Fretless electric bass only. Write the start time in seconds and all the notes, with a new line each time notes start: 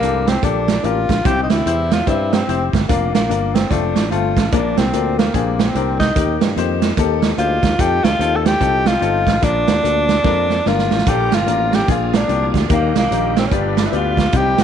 0.01 C2
0.43 A#1
0.84 A1
1.09 A#1
1.25 C2
1.50 D2
1.66 E2
2.07 G2
2.49 F1
2.73 G1
2.90 F1
3.15 A#1
3.30 G1
3.71 F1
3.96 A1
4.12 G1
4.36 A1
4.53 A#1
4.78 C2
4.94 D2
5.34 A#1
5.75 C2
6.16 D#2
6.41 G2
6.56 F2
6.98 D#2
7.38 D2
7.63 D#2
7.79 F2
8.04 D2
8.19 D#2
8.61 C2
9.02 G1
9.27 A1
9.43 A#1
9.69 D#2
9.84 D2
10.24 F2
10.66 G1
10.91 A1
11.07 A#1
11.32 G1
11.48 A1
11.88 A#1
12.29 C2
12.54 D2
12.70 D#2
12.95 C2
13.11 A#1
13.51 G1
13.93 D2
14.33 C2
14.59 A1